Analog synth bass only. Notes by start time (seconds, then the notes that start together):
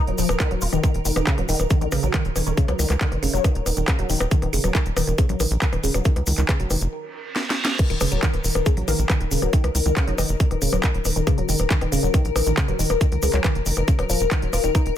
0.07 D#1
0.18 D#1
0.29 D#1
0.51 D#1
0.62 D#1
0.73 D#1
0.94 D#1
1.05 F1
1.16 D#1
1.38 D#1
1.49 D#1
1.60 D#1
1.81 A#1
1.92 A#1
2.03 A#1
2.25 D#1
2.36 D#1
2.47 D#1
2.68 C#2
2.79 C#2
2.90 C#2
3.12 F1
3.23 F1
3.34 F1
3.55 D#1
3.66 D#1
3.77 D#1
3.99 D#1
4.10 D#1
4.20 D#1
4.42 D#1
4.53 F1
4.64 D#1
4.86 D#1
4.97 D#1
5.07 D#1
5.29 A#1
5.40 A#1
5.51 A#1
5.73 D#1
5.84 D#1
5.94 D#1
6.16 C#2
6.27 C#2
6.38 C#2
6.60 F1
6.70 F1
6.81 F1
7.90 D#1
8.01 F1
8.12 D#1
8.34 D#1
8.44 D#1
8.55 D#1
8.77 A#1
8.88 A#1
8.99 A#1
9.20 D#1
9.31 D#1
9.42 D#1
9.64 C#2
9.75 C#2
9.86 C#2
10.07 F1
10.18 F1
10.29 F1
10.51 D#1
10.62 D#1
10.73 D#1
10.94 D#1
11.05 D#1
11.16 D#1
11.38 D#1
11.49 F1
11.60 D#1
11.81 D#1
11.92 D#1
12.03 D#1
12.25 A#1
12.36 A#1
12.47 A#1
12.68 D#1
12.79 D#1
12.90 D#1
13.12 C#2
13.23 C#2
13.34 C#2
13.55 F1
13.66 F1
13.77 F1
13.99 D#1
14.10 D#1
14.20 D#1
14.42 D#1
14.53 D#1
14.64 D#1
14.86 D#1